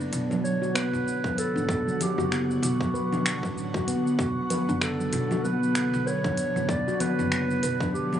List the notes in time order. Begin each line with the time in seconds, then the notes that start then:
Already playing: D3 B3 D5 F#5
0.00 D4, shaker
0.12 B1, closed hi-hat, shaker
0.30 F#3, low conga, shaker
0.44 C#5, shaker
0.62 F#4, shaker
0.75 B3 B4, finger snap, closed hi-hat, shaker
0.93 B1, shaker
1.08 shaker
1.24 kick, low conga, shaker
1.37 A4 B4, closed hi-hat, shaker
1.56 A1 D4, shaker
1.69 B1, kick, shaker
1.87 F#3, shaker
2.01 G4, closed hi-hat, low conga, shaker
2.18 F#1 F#4, shaker
2.32 B3, finger snap, shaker
2.51 shaker
2.62 B1 F#4, closed hi-hat, shaker
2.81 kick, low conga, shaker
2.94 B4, shaker
3.12 D4, low conga, shaker
3.26 finger snap, closed hi-hat, shaker
3.43 A1 F#3, kick, shaker
3.58 shaker
3.74 B1 F#4, kick, shaker
3.88 B3, closed hi-hat, shaker
4.07 shaker
4.19 B1 F#4, kick, shaker
4.50 B4, closed hi-hat, low conga, shaker
4.69 F#1 D4, shaker
4.81 A4, finger snap, shaker
5.00 F#3, shaker
5.13 B1, closed hi-hat, shaker
5.31 F#4, low conga, shaker
5.43 B3 B4, shaker
5.63 shaker
5.75 finger snap, closed hi-hat, shaker
5.93 B1, shaker
6.06 B4 C#5, shaker
6.24 D4, kick, low conga, shaker
6.37 closed hi-hat, shaker
6.56 A1 F#3, shaker
6.69 B1 D5, kick, shaker
6.88 F#4, shaker
7.00 B3 B4, closed hi-hat, low conga, shaker
7.19 F#1, shaker
7.32 finger snap, shaker
7.51 shaker
7.63 B1 B4, closed hi-hat, shaker
7.80 D4, kick, low conga, shaker
7.93 G4, shaker
8.13 F#3, low conga, shaker